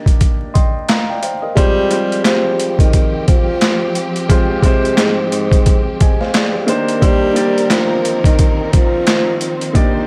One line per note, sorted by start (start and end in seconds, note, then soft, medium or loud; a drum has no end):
0.00 1.58 A#3 medium
0.00 1.58 D4 medium
0.00 1.59 D#4 medium
0.00 1.57 G4 medium
0.00 1.10 D5 loud
0.06 kick medium
0.06 closed hi-hat medium
0.21 kick medium
0.21 closed hi-hat medium
0.54 0.86 D#5 medium
0.54 0.87 G5 medium
0.54 0.86 C6 medium
0.54 kick medium
0.54 closed hi-hat medium
0.89 1.08 F5 medium
0.89 1.08 A#5 medium
0.89 snare loud
0.89 clap medium
0.89 closed hi-hat medium
1.09 1.22 D5 medium
1.09 1.21 G5 medium
1.22 1.42 C5 medium
1.22 1.42 F5 medium
1.22 1.54 G5 medium
1.22 closed hi-hat medium
1.42 1.75 A#4 medium
1.42 1.75 D#5 medium
1.55 6.64 F3 medium
1.55 2.21 G3 loud
1.55 1.82 G#3 medium
1.55 1.82 C4 medium
1.55 6.64 C4 medium
1.55 1.83 F4 medium
1.55 6.64 G4 loud
1.55 1.83 G4 medium
1.55 1.83 C5 loud
1.55 kick loud
1.55 closed hi-hat medium
1.89 2.87 G3 medium
1.89 2.88 C4 medium
1.89 2.88 F4 medium
1.89 2.88 G4 medium
1.89 2.89 C5 loud
1.89 closed hi-hat medium
2.12 closed hi-hat soft
2.25 2.76 F3 medium
2.25 snare loud
2.25 clap medium
2.25 closed hi-hat loud
2.60 closed hi-hat medium
2.79 3.24 D#3 medium
2.79 kick medium
2.79 closed hi-hat medium
2.93 kick medium
2.93 closed hi-hat medium
3.27 4.26 F3 medium
3.27 kick loud
3.27 closed hi-hat medium
3.61 snare loud
3.61 clap medium
3.61 closed hi-hat medium
3.95 closed hi-hat medium
4.16 closed hi-hat medium
4.28 4.55 G#3 medium
4.28 4.55 C4 medium
4.28 4.56 F4 medium
4.28 4.56 G4 medium
4.28 4.56 C5 medium
4.28 kick loud
4.28 closed hi-hat loud
4.63 4.94 C3 medium
4.63 5.60 G#3 medium
4.63 5.61 C4 medium
4.63 5.61 F4 medium
4.63 5.61 G4 medium
4.63 5.62 C5 loud
4.63 kick medium
4.63 closed hi-hat medium
4.85 closed hi-hat soft
4.98 5.28 G#2 medium
4.98 snare loud
4.98 clap medium
4.98 closed hi-hat loud
5.32 5.83 G#2 medium
5.32 closed hi-hat medium
5.52 kick medium
5.52 closed hi-hat medium
5.66 kick medium
5.66 closed hi-hat medium
6.00 6.20 D#5 medium
6.00 6.20 G#5 medium
6.00 kick loud
6.00 closed hi-hat medium
6.20 6.33 C5 medium
6.20 6.33 F5 medium
6.20 snare soft
6.34 6.54 G#4 medium
6.34 6.53 D5 medium
6.34 snare loud
6.34 clap medium
6.34 closed hi-hat medium
6.53 6.67 G4 medium
6.53 6.68 C5 medium
6.66 10.07 D#3 medium
6.66 6.96 A#3 medium
6.66 10.07 C4 medium
6.66 6.96 D4 loud
6.66 6.96 D#4 medium
6.66 6.97 G4 medium
6.66 9.38 A#4 medium
6.66 6.97 C5 loud
6.66 closed hi-hat medium
6.88 closed hi-hat medium
7.00 7.66 G3 loud
7.00 7.27 A#3 medium
7.00 7.28 D4 medium
7.00 7.28 D#4 medium
7.00 7.28 G4 medium
7.00 7.29 C5 loud
7.00 kick loud
7.00 closed hi-hat loud
7.34 8.33 A#3 medium
7.34 8.33 D4 medium
7.34 8.33 D#4 medium
7.34 8.34 G4 medium
7.34 8.34 D5 loud
7.34 closed hi-hat medium
7.58 closed hi-hat soft
7.70 8.21 F3 loud
7.70 snare loud
7.70 clap medium
7.70 closed hi-hat loud
8.05 closed hi-hat medium
8.24 8.70 D#3 medium
8.24 kick medium
8.24 closed hi-hat medium
8.39 kick medium
8.39 closed hi-hat medium
8.72 9.71 F3 loud
8.72 kick loud
8.72 closed hi-hat medium
9.07 snare loud
9.07 clap medium
9.07 closed hi-hat medium
9.41 10.07 C5 medium
9.41 closed hi-hat medium
9.61 closed hi-hat medium
9.73 10.00 A#3 medium
9.73 10.00 D4 medium
9.73 10.01 D#4 medium
9.73 10.01 G4 medium
9.73 10.01 D5 loud
9.73 kick loud
9.73 closed hi-hat loud